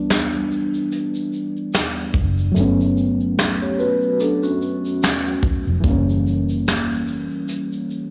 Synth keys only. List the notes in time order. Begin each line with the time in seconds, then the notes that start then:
Already playing: E3 G3 B3 D4
2.51 F#3 A3
2.57 B3 C#4
5.80 E3 G3
5.86 A#3 C#4